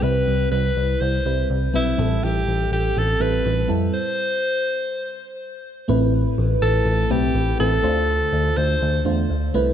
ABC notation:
X:1
M:4/4
L:1/8
Q:1/4=123
K:Am
V:1 name="Alto saxophone"
B2 B2 c2 z E- | E G2 G A B2 z | c6 z2 | z3 A2 G2 A- |
A3 c2 z3 |]
V:2 name="FM electric piano"
[G,CEB]4 z [G,CEB]2 [G,CEB] | [G,CEA]4 z [G,CEA]2 [G,CEA] | z8 | [A,CEB]4 z [A,CEB]2 [A,CEB] |
[A,DFc]4 z [A,DFc]2 [A,CEB] |]
V:3 name="FM electric piano" clef=bass
C,3 z4 z | A,,3 z4 z | z8 | A,,3 z4 z |
D,3 z4 C, |]
V:4 name="Tine electric piano" clef=bass
C,, C,, C,, C,, C,, C,, C,, B,,, | A,,, A,,, A,,, A,,, A,,, A,,, A,,, F,, | z8 | A,,,2 A,,, A,,, A,,, B,,, A,,, A,,, |
D,,2 D,, D,, D,, E,, D,, C,, |]